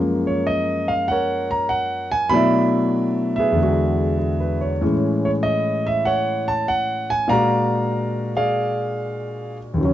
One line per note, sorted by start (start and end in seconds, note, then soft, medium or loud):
0.00 2.32 F#2 soft
0.00 2.32 F3 soft
0.00 2.33 G#3 soft
0.00 2.33 A#3 medium
0.27 0.47 C#5 medium
0.47 0.91 D#5 medium
0.88 1.06 F5 medium
1.08 2.30 A#4 medium
1.08 2.30 C#5 medium
1.08 1.48 F#5 medium
1.51 1.69 A#5 medium
1.69 2.14 F#5 medium
2.11 2.32 G#5 medium
2.29 3.56 B2 soft
2.29 3.56 F#3 medium
2.29 3.57 A3 medium
2.29 3.57 B3 soft
2.29 3.39 B5 loud
2.34 3.58 D4 medium
2.34 3.58 E4 medium
2.34 3.53 D5 medium
2.34 3.34 E5 medium
3.36 4.17 G#4 medium
3.36 4.39 B4 soft
3.36 4.57 E5 medium
3.52 4.79 E2 soft
3.52 4.81 D3 soft
3.59 4.81 G#3 soft
3.59 4.84 F#4 medium
4.19 4.59 G#4 soft
4.40 4.73 B4 soft
4.61 4.93 C#5 soft
4.81 7.30 A2 soft
4.81 7.30 E3 soft
4.81 7.27 G#3 soft
4.81 7.30 C#4 medium
5.25 5.30 C#5 medium
5.43 5.87 D#5 medium
5.87 6.06 E5 medium
6.05 7.27 C#5 medium
6.05 6.50 F#5 medium
6.48 6.68 A5 medium
6.68 7.12 F#5 medium
7.10 7.28 G#5 medium
7.28 9.77 A#2 medium
7.28 9.78 G#3 soft
7.28 9.79 D4 soft
7.28 8.36 D5 medium
7.28 8.35 F5 medium
7.28 8.31 A#5 medium
7.32 9.80 F#4 medium
8.37 9.56 G#4 medium
8.37 9.56 D5 medium
8.37 9.56 F5 medium
9.74 9.93 D#2 soft
9.74 9.93 C#3 soft
9.81 9.93 F#3 soft
9.81 9.93 C#4 medium